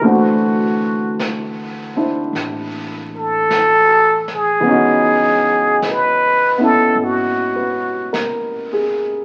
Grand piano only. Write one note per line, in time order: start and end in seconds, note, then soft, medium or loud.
0.01 4.59 E3 medium
0.01 4.67 A3 soft
0.01 1.95 C4 soft
0.01 1.95 D4 soft
0.06 4.68 F#4 medium
1.96 4.67 C4 soft
1.96 4.67 D4 soft
1.96 4.67 E4 soft
1.96 4.68 C5 soft
4.60 9.25 E3 medium
4.60 6.56 B3 medium
4.66 6.58 C#4 soft
4.66 9.25 D#4 medium
4.71 9.25 F#4 medium
6.58 9.25 B3 soft
6.58 9.25 C#4 soft
6.58 9.25 E4 soft
7.56 8.39 B4 soft
8.13 9.06 A#4 soft
8.73 9.25 G#4 soft